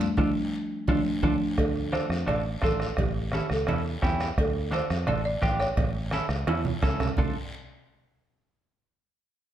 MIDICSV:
0, 0, Header, 1, 6, 480
1, 0, Start_track
1, 0, Key_signature, -1, "minor"
1, 0, Tempo, 350058
1, 237, Time_signature, 4, 2, 24, 8
1, 13073, End_track
2, 0, Start_track
2, 0, Title_t, "Marimba"
2, 0, Program_c, 0, 12
2, 249, Note_on_c, 0, 53, 86
2, 253, Note_on_c, 0, 62, 90
2, 255, Note_on_c, 0, 57, 90
2, 399, Note_off_c, 0, 53, 0
2, 401, Note_off_c, 0, 62, 0
2, 402, Note_off_c, 0, 57, 0
2, 1215, Note_on_c, 0, 53, 94
2, 1216, Note_on_c, 0, 62, 94
2, 1221, Note_on_c, 0, 57, 90
2, 1363, Note_off_c, 0, 53, 0
2, 1363, Note_off_c, 0, 62, 0
2, 1366, Note_off_c, 0, 57, 0
2, 1684, Note_on_c, 0, 53, 93
2, 1686, Note_on_c, 0, 57, 89
2, 1689, Note_on_c, 0, 62, 92
2, 1837, Note_off_c, 0, 53, 0
2, 1838, Note_off_c, 0, 57, 0
2, 1840, Note_off_c, 0, 62, 0
2, 2164, Note_on_c, 0, 69, 84
2, 2638, Note_on_c, 0, 72, 96
2, 2658, Note_off_c, 0, 69, 0
2, 3129, Note_on_c, 0, 74, 105
2, 3135, Note_off_c, 0, 72, 0
2, 3573, Note_off_c, 0, 74, 0
2, 3624, Note_on_c, 0, 69, 90
2, 4108, Note_off_c, 0, 69, 0
2, 4116, Note_on_c, 0, 67, 80
2, 4547, Note_off_c, 0, 67, 0
2, 4581, Note_on_c, 0, 67, 81
2, 4685, Note_off_c, 0, 67, 0
2, 4839, Note_on_c, 0, 69, 83
2, 5268, Note_off_c, 0, 69, 0
2, 6035, Note_on_c, 0, 69, 85
2, 6506, Note_on_c, 0, 72, 93
2, 6512, Note_off_c, 0, 69, 0
2, 6941, Note_off_c, 0, 72, 0
2, 6964, Note_on_c, 0, 74, 105
2, 7072, Note_off_c, 0, 74, 0
2, 7201, Note_on_c, 0, 74, 113
2, 7673, Note_on_c, 0, 73, 93
2, 7695, Note_off_c, 0, 74, 0
2, 9301, Note_off_c, 0, 73, 0
2, 9838, Note_on_c, 0, 74, 82
2, 10062, Note_off_c, 0, 74, 0
2, 13073, End_track
3, 0, Start_track
3, 0, Title_t, "Clean electric guitar"
3, 0, Program_c, 1, 27
3, 240, Note_on_c, 1, 62, 96
3, 242, Note_on_c, 1, 65, 88
3, 253, Note_on_c, 1, 69, 87
3, 394, Note_off_c, 1, 65, 0
3, 395, Note_off_c, 1, 62, 0
3, 396, Note_off_c, 1, 69, 0
3, 1215, Note_on_c, 1, 62, 93
3, 1215, Note_on_c, 1, 65, 85
3, 1220, Note_on_c, 1, 69, 74
3, 1361, Note_off_c, 1, 69, 0
3, 1362, Note_off_c, 1, 65, 0
3, 1364, Note_off_c, 1, 62, 0
3, 1691, Note_on_c, 1, 69, 94
3, 1695, Note_on_c, 1, 62, 87
3, 1700, Note_on_c, 1, 65, 77
3, 1841, Note_off_c, 1, 69, 0
3, 1845, Note_off_c, 1, 62, 0
3, 1845, Note_off_c, 1, 65, 0
3, 2638, Note_on_c, 1, 62, 66
3, 2643, Note_on_c, 1, 65, 62
3, 2654, Note_on_c, 1, 69, 70
3, 2808, Note_off_c, 1, 62, 0
3, 2812, Note_off_c, 1, 65, 0
3, 2814, Note_off_c, 1, 69, 0
3, 3105, Note_on_c, 1, 62, 64
3, 3115, Note_on_c, 1, 65, 55
3, 3119, Note_on_c, 1, 69, 72
3, 3284, Note_off_c, 1, 62, 0
3, 3285, Note_off_c, 1, 65, 0
3, 3289, Note_off_c, 1, 69, 0
3, 3590, Note_on_c, 1, 62, 74
3, 3600, Note_on_c, 1, 65, 68
3, 3612, Note_on_c, 1, 69, 77
3, 3933, Note_off_c, 1, 62, 0
3, 3937, Note_off_c, 1, 65, 0
3, 3943, Note_off_c, 1, 69, 0
3, 4565, Note_on_c, 1, 61, 69
3, 4573, Note_on_c, 1, 64, 57
3, 4584, Note_on_c, 1, 69, 61
3, 4732, Note_off_c, 1, 61, 0
3, 4736, Note_off_c, 1, 64, 0
3, 4739, Note_off_c, 1, 69, 0
3, 5041, Note_on_c, 1, 61, 64
3, 5048, Note_on_c, 1, 64, 58
3, 5057, Note_on_c, 1, 69, 72
3, 5210, Note_off_c, 1, 61, 0
3, 5213, Note_off_c, 1, 64, 0
3, 5218, Note_off_c, 1, 69, 0
3, 5514, Note_on_c, 1, 61, 90
3, 5524, Note_on_c, 1, 67, 87
3, 5530, Note_on_c, 1, 64, 70
3, 5856, Note_off_c, 1, 61, 0
3, 5858, Note_off_c, 1, 64, 0
3, 5858, Note_off_c, 1, 67, 0
3, 6461, Note_on_c, 1, 62, 73
3, 6472, Note_on_c, 1, 65, 67
3, 6482, Note_on_c, 1, 69, 71
3, 6640, Note_off_c, 1, 62, 0
3, 6646, Note_off_c, 1, 65, 0
3, 6648, Note_off_c, 1, 69, 0
3, 6950, Note_on_c, 1, 62, 70
3, 6957, Note_on_c, 1, 65, 60
3, 6971, Note_on_c, 1, 69, 73
3, 7124, Note_off_c, 1, 62, 0
3, 7127, Note_off_c, 1, 65, 0
3, 7134, Note_off_c, 1, 69, 0
3, 7427, Note_on_c, 1, 62, 71
3, 7435, Note_on_c, 1, 67, 84
3, 7440, Note_on_c, 1, 65, 62
3, 7771, Note_off_c, 1, 62, 0
3, 7773, Note_off_c, 1, 65, 0
3, 7774, Note_off_c, 1, 67, 0
3, 8399, Note_on_c, 1, 61, 84
3, 8408, Note_on_c, 1, 64, 80
3, 8410, Note_on_c, 1, 69, 88
3, 8568, Note_off_c, 1, 61, 0
3, 8571, Note_off_c, 1, 69, 0
3, 8572, Note_off_c, 1, 64, 0
3, 8883, Note_on_c, 1, 61, 74
3, 8889, Note_on_c, 1, 64, 74
3, 8896, Note_on_c, 1, 69, 70
3, 9049, Note_off_c, 1, 61, 0
3, 9053, Note_off_c, 1, 64, 0
3, 9054, Note_off_c, 1, 69, 0
3, 9358, Note_on_c, 1, 61, 91
3, 9369, Note_on_c, 1, 64, 69
3, 9372, Note_on_c, 1, 69, 93
3, 9697, Note_off_c, 1, 61, 0
3, 9698, Note_off_c, 1, 64, 0
3, 9702, Note_off_c, 1, 69, 0
3, 9844, Note_on_c, 1, 62, 88
3, 9850, Note_on_c, 1, 65, 69
3, 9857, Note_on_c, 1, 69, 91
3, 10067, Note_off_c, 1, 69, 0
3, 10068, Note_off_c, 1, 62, 0
3, 10068, Note_off_c, 1, 65, 0
3, 13073, End_track
4, 0, Start_track
4, 0, Title_t, "Fingered electric bass"
4, 0, Program_c, 2, 33
4, 0, Note_on_c, 2, 41, 86
4, 143, Note_off_c, 2, 41, 0
4, 246, Note_on_c, 2, 38, 98
4, 421, Note_off_c, 2, 38, 0
4, 1206, Note_on_c, 2, 38, 91
4, 1382, Note_off_c, 2, 38, 0
4, 1678, Note_on_c, 2, 38, 89
4, 1858, Note_off_c, 2, 38, 0
4, 2167, Note_on_c, 2, 38, 90
4, 2741, Note_off_c, 2, 38, 0
4, 2873, Note_on_c, 2, 41, 79
4, 3069, Note_off_c, 2, 41, 0
4, 3115, Note_on_c, 2, 33, 96
4, 3502, Note_off_c, 2, 33, 0
4, 3605, Note_on_c, 2, 33, 83
4, 3988, Note_off_c, 2, 33, 0
4, 4086, Note_on_c, 2, 33, 98
4, 4661, Note_off_c, 2, 33, 0
4, 4807, Note_on_c, 2, 37, 81
4, 4998, Note_off_c, 2, 37, 0
4, 5041, Note_on_c, 2, 40, 97
4, 5426, Note_off_c, 2, 40, 0
4, 5521, Note_on_c, 2, 40, 92
4, 5905, Note_off_c, 2, 40, 0
4, 6001, Note_on_c, 2, 38, 103
4, 6577, Note_off_c, 2, 38, 0
4, 6724, Note_on_c, 2, 41, 85
4, 6915, Note_off_c, 2, 41, 0
4, 6961, Note_on_c, 2, 33, 98
4, 7345, Note_off_c, 2, 33, 0
4, 7438, Note_on_c, 2, 33, 85
4, 7823, Note_off_c, 2, 33, 0
4, 7915, Note_on_c, 2, 33, 99
4, 8493, Note_off_c, 2, 33, 0
4, 8625, Note_on_c, 2, 37, 91
4, 8823, Note_off_c, 2, 37, 0
4, 8875, Note_on_c, 2, 40, 100
4, 9261, Note_off_c, 2, 40, 0
4, 9360, Note_on_c, 2, 37, 94
4, 9744, Note_off_c, 2, 37, 0
4, 9843, Note_on_c, 2, 38, 93
4, 10064, Note_off_c, 2, 38, 0
4, 13073, End_track
5, 0, Start_track
5, 0, Title_t, "Two-headed folk drums"
5, 242, Note_on_c, 9, 36, 92
5, 380, Note_off_c, 9, 36, 0
5, 1204, Note_on_c, 9, 36, 97
5, 1342, Note_off_c, 9, 36, 0
5, 1684, Note_on_c, 9, 36, 94
5, 1821, Note_off_c, 9, 36, 0
5, 2165, Note_on_c, 9, 37, 77
5, 2166, Note_on_c, 9, 36, 81
5, 2302, Note_off_c, 9, 37, 0
5, 2303, Note_off_c, 9, 36, 0
5, 2649, Note_on_c, 9, 37, 81
5, 2786, Note_off_c, 9, 37, 0
5, 2882, Note_on_c, 9, 37, 79
5, 3019, Note_off_c, 9, 37, 0
5, 3122, Note_on_c, 9, 37, 83
5, 3259, Note_off_c, 9, 37, 0
5, 3588, Note_on_c, 9, 37, 77
5, 3603, Note_on_c, 9, 36, 81
5, 3725, Note_off_c, 9, 37, 0
5, 3740, Note_off_c, 9, 36, 0
5, 3836, Note_on_c, 9, 37, 81
5, 3974, Note_off_c, 9, 37, 0
5, 4070, Note_on_c, 9, 37, 79
5, 4082, Note_on_c, 9, 36, 83
5, 4207, Note_off_c, 9, 37, 0
5, 4219, Note_off_c, 9, 36, 0
5, 4548, Note_on_c, 9, 37, 78
5, 4685, Note_off_c, 9, 37, 0
5, 4795, Note_on_c, 9, 37, 81
5, 4932, Note_off_c, 9, 37, 0
5, 5030, Note_on_c, 9, 37, 91
5, 5167, Note_off_c, 9, 37, 0
5, 5519, Note_on_c, 9, 37, 81
5, 5522, Note_on_c, 9, 36, 78
5, 5656, Note_off_c, 9, 37, 0
5, 5659, Note_off_c, 9, 36, 0
5, 5768, Note_on_c, 9, 37, 83
5, 5905, Note_off_c, 9, 37, 0
5, 6002, Note_on_c, 9, 36, 83
5, 6003, Note_on_c, 9, 37, 82
5, 6139, Note_off_c, 9, 36, 0
5, 6141, Note_off_c, 9, 37, 0
5, 6488, Note_on_c, 9, 37, 82
5, 6626, Note_off_c, 9, 37, 0
5, 6725, Note_on_c, 9, 37, 86
5, 6862, Note_off_c, 9, 37, 0
5, 6951, Note_on_c, 9, 37, 86
5, 7088, Note_off_c, 9, 37, 0
5, 7438, Note_on_c, 9, 36, 76
5, 7439, Note_on_c, 9, 37, 82
5, 7575, Note_off_c, 9, 36, 0
5, 7576, Note_off_c, 9, 37, 0
5, 7680, Note_on_c, 9, 37, 80
5, 7817, Note_off_c, 9, 37, 0
5, 7915, Note_on_c, 9, 37, 80
5, 7916, Note_on_c, 9, 36, 82
5, 8052, Note_off_c, 9, 37, 0
5, 8053, Note_off_c, 9, 36, 0
5, 8382, Note_on_c, 9, 37, 83
5, 8519, Note_off_c, 9, 37, 0
5, 8624, Note_on_c, 9, 37, 86
5, 8761, Note_off_c, 9, 37, 0
5, 8875, Note_on_c, 9, 37, 89
5, 9012, Note_off_c, 9, 37, 0
5, 9359, Note_on_c, 9, 37, 82
5, 9362, Note_on_c, 9, 36, 85
5, 9496, Note_off_c, 9, 37, 0
5, 9499, Note_off_c, 9, 36, 0
5, 9600, Note_on_c, 9, 37, 88
5, 9737, Note_off_c, 9, 37, 0
5, 9843, Note_on_c, 9, 36, 97
5, 9980, Note_off_c, 9, 36, 0
5, 13073, End_track
6, 0, Start_track
6, 0, Title_t, "Drums"
6, 0, Note_on_c, 9, 73, 69
6, 14, Note_on_c, 9, 65, 64
6, 132, Note_off_c, 9, 73, 0
6, 151, Note_off_c, 9, 65, 0
6, 231, Note_on_c, 9, 74, 90
6, 233, Note_on_c, 9, 63, 94
6, 246, Note_on_c, 9, 65, 92
6, 368, Note_off_c, 9, 74, 0
6, 370, Note_off_c, 9, 63, 0
6, 383, Note_off_c, 9, 65, 0
6, 1200, Note_on_c, 9, 63, 94
6, 1200, Note_on_c, 9, 74, 96
6, 1205, Note_on_c, 9, 65, 100
6, 1337, Note_off_c, 9, 63, 0
6, 1337, Note_off_c, 9, 74, 0
6, 1342, Note_off_c, 9, 65, 0
6, 1677, Note_on_c, 9, 63, 92
6, 1686, Note_on_c, 9, 65, 100
6, 1814, Note_off_c, 9, 63, 0
6, 1823, Note_off_c, 9, 65, 0
6, 2156, Note_on_c, 9, 63, 33
6, 2170, Note_on_c, 9, 74, 65
6, 2178, Note_on_c, 9, 56, 97
6, 2293, Note_off_c, 9, 63, 0
6, 2308, Note_off_c, 9, 74, 0
6, 2315, Note_off_c, 9, 56, 0
6, 2646, Note_on_c, 9, 63, 83
6, 2663, Note_on_c, 9, 73, 70
6, 2783, Note_off_c, 9, 63, 0
6, 2800, Note_off_c, 9, 73, 0
6, 2905, Note_on_c, 9, 73, 67
6, 3043, Note_off_c, 9, 73, 0
6, 3126, Note_on_c, 9, 63, 35
6, 3126, Note_on_c, 9, 64, 78
6, 3137, Note_on_c, 9, 56, 84
6, 3143, Note_on_c, 9, 74, 73
6, 3264, Note_off_c, 9, 63, 0
6, 3264, Note_off_c, 9, 64, 0
6, 3274, Note_off_c, 9, 56, 0
6, 3280, Note_off_c, 9, 74, 0
6, 3603, Note_on_c, 9, 63, 76
6, 3624, Note_on_c, 9, 73, 68
6, 3740, Note_off_c, 9, 63, 0
6, 3761, Note_off_c, 9, 73, 0
6, 3864, Note_on_c, 9, 73, 67
6, 4002, Note_off_c, 9, 73, 0
6, 4092, Note_on_c, 9, 56, 95
6, 4093, Note_on_c, 9, 63, 35
6, 4093, Note_on_c, 9, 64, 71
6, 4102, Note_on_c, 9, 74, 65
6, 4230, Note_off_c, 9, 56, 0
6, 4230, Note_off_c, 9, 63, 0
6, 4230, Note_off_c, 9, 64, 0
6, 4239, Note_off_c, 9, 74, 0
6, 4566, Note_on_c, 9, 63, 87
6, 4579, Note_on_c, 9, 73, 67
6, 4703, Note_off_c, 9, 63, 0
6, 4717, Note_off_c, 9, 73, 0
6, 4822, Note_on_c, 9, 73, 66
6, 4959, Note_off_c, 9, 73, 0
6, 5050, Note_on_c, 9, 63, 34
6, 5050, Note_on_c, 9, 64, 86
6, 5055, Note_on_c, 9, 74, 73
6, 5057, Note_on_c, 9, 56, 88
6, 5187, Note_off_c, 9, 63, 0
6, 5187, Note_off_c, 9, 64, 0
6, 5192, Note_off_c, 9, 74, 0
6, 5194, Note_off_c, 9, 56, 0
6, 5534, Note_on_c, 9, 63, 83
6, 5534, Note_on_c, 9, 73, 66
6, 5671, Note_off_c, 9, 63, 0
6, 5671, Note_off_c, 9, 73, 0
6, 5764, Note_on_c, 9, 73, 69
6, 5901, Note_off_c, 9, 73, 0
6, 6009, Note_on_c, 9, 74, 66
6, 6010, Note_on_c, 9, 56, 105
6, 6146, Note_off_c, 9, 74, 0
6, 6147, Note_off_c, 9, 56, 0
6, 6469, Note_on_c, 9, 63, 86
6, 6486, Note_on_c, 9, 73, 72
6, 6606, Note_off_c, 9, 63, 0
6, 6623, Note_off_c, 9, 73, 0
6, 6722, Note_on_c, 9, 73, 67
6, 6859, Note_off_c, 9, 73, 0
6, 6955, Note_on_c, 9, 63, 34
6, 6955, Note_on_c, 9, 64, 78
6, 6960, Note_on_c, 9, 56, 85
6, 6967, Note_on_c, 9, 74, 68
6, 7092, Note_off_c, 9, 63, 0
6, 7092, Note_off_c, 9, 64, 0
6, 7097, Note_off_c, 9, 56, 0
6, 7104, Note_off_c, 9, 74, 0
6, 7430, Note_on_c, 9, 63, 84
6, 7438, Note_on_c, 9, 73, 67
6, 7567, Note_off_c, 9, 63, 0
6, 7575, Note_off_c, 9, 73, 0
6, 7682, Note_on_c, 9, 73, 69
6, 7819, Note_off_c, 9, 73, 0
6, 7915, Note_on_c, 9, 56, 104
6, 7923, Note_on_c, 9, 63, 33
6, 7923, Note_on_c, 9, 64, 71
6, 7927, Note_on_c, 9, 74, 73
6, 8052, Note_off_c, 9, 56, 0
6, 8060, Note_off_c, 9, 63, 0
6, 8060, Note_off_c, 9, 64, 0
6, 8064, Note_off_c, 9, 74, 0
6, 8402, Note_on_c, 9, 63, 74
6, 8403, Note_on_c, 9, 73, 72
6, 8539, Note_off_c, 9, 63, 0
6, 8540, Note_off_c, 9, 73, 0
6, 8639, Note_on_c, 9, 73, 72
6, 8776, Note_off_c, 9, 73, 0
6, 8875, Note_on_c, 9, 63, 81
6, 8882, Note_on_c, 9, 56, 85
6, 8882, Note_on_c, 9, 65, 114
6, 8882, Note_on_c, 9, 74, 74
6, 9012, Note_off_c, 9, 63, 0
6, 9019, Note_off_c, 9, 56, 0
6, 9019, Note_off_c, 9, 65, 0
6, 9019, Note_off_c, 9, 74, 0
6, 9115, Note_on_c, 9, 65, 72
6, 9116, Note_on_c, 9, 64, 94
6, 9252, Note_off_c, 9, 65, 0
6, 9253, Note_off_c, 9, 64, 0
6, 9349, Note_on_c, 9, 64, 82
6, 9359, Note_on_c, 9, 66, 78
6, 9380, Note_on_c, 9, 73, 67
6, 9486, Note_off_c, 9, 64, 0
6, 9496, Note_off_c, 9, 66, 0
6, 9517, Note_off_c, 9, 73, 0
6, 9598, Note_on_c, 9, 66, 82
6, 9603, Note_on_c, 9, 64, 93
6, 9612, Note_on_c, 9, 73, 70
6, 9736, Note_off_c, 9, 66, 0
6, 9740, Note_off_c, 9, 64, 0
6, 9749, Note_off_c, 9, 73, 0
6, 9829, Note_on_c, 9, 64, 95
6, 9848, Note_on_c, 9, 66, 97
6, 9849, Note_on_c, 9, 74, 91
6, 9966, Note_off_c, 9, 64, 0
6, 9985, Note_off_c, 9, 66, 0
6, 9986, Note_off_c, 9, 74, 0
6, 13073, End_track
0, 0, End_of_file